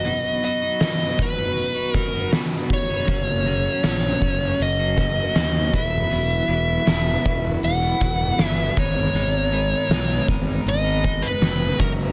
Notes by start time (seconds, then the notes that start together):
Already playing: D#5
0.05 B2 F#3 B3 D#4 F#4, open hi-hat
0.43 F#3 B3 D#4 F#4 D#5
0.62 B3 D#4 F#4
0.80 B2 F#3 B3 D#4 F#4, snare, open hi-hat
1.19 F#3 B3 D#4 F#4 B4, kick
1.37 B3 D#4 F#4
1.57 open hi-hat
1.75 B3 D#4 F#4
1.94 F#3 B3 D#4 F#4 A#4, kick, snare
2.13 B3 D#4 F#4
2.32 B2 F#3 B3 D#4 F#4, snare, open hi-hat
2.70 C#5, kick
2.88 B3 D#4 F#4
3.06 F#1 F#2 C#3 F#3 A#3 C#4 F#4, kick, open hi-hat
3.45 F#3 A#3 C#4 F#4
3.64 F#3 A#3 C#4 F#4
3.83 A#1 F#2 C#3 F#3 A#3 C#4 F#4, snare, open hi-hat
4.20 F#1 F#3 A#3 C#4 F#4, kick
4.40 F#3 A#3 C#4 F#4
4.60 F#1 D#5, open hi-hat
4.78 F#3 A#3 C#4 F#4
4.96 F#3 A#3 C#4 F#4, kick, snare
5.16 F#3 A#3 C#4 F#4
5.34 D#2 F#2 C#3 F#3 A#3 C#4 F#4, snare, open hi-hat
5.73 E1 E3 F#3 B3 E4 E5, kick
5.91 F#3 B3 E4
6.10 E1 E3 F#3 B3 E4, open hi-hat
6.48 E1 E3 F#3 B3 E4
6.68 F#3 B3 E4
6.86 E1 E3 F#3 B3 E4, snare, open hi-hat
7.24 E1 E3 F#3 B3 E4, kick
7.43 F#3 B3 E4
7.63 E1 F#5, open hi-hat
7.81 F#3 B3 E4
8.00 E1 E3 F#3 B3 E4, kick
8.19 F#3 B3 E4
8.38 G1 E3 F#3 B3 E4, snare, open hi-hat
8.44 E5
8.77 G#1 G#2 D#3 G#3 B3 D#4 A#4 C#5, kick
8.96 G#3 B3 D#4 A#4
9.14 G#1 G#2 D#3 G#3 B3 D#4 A#4, open hi-hat
9.52 G#3 B3 D#4 A#4
9.72 G#3 B3 D#4 A#4
9.89 B1 G#2 D#3 G#3 B3 D#4 A#4, snare, open hi-hat
10.28 G#1 G#3 B3 D#4 A#4, kick
10.47 G#3 B3 D#4 A#4
10.66 G#1 D#5, open hi-hat
10.84 G#3 B3 D#4 A#4
11.04 G#3 B3 D#4, kick
11.22 G#3 B3 D#4 B4
11.41 F1 G#2 D#3 G#3 B3 D#4, snare, open hi-hat
11.78 F#1 F#3 G#3 C#4 F#4 A#4, kick
11.97 C#4 F#4 A#4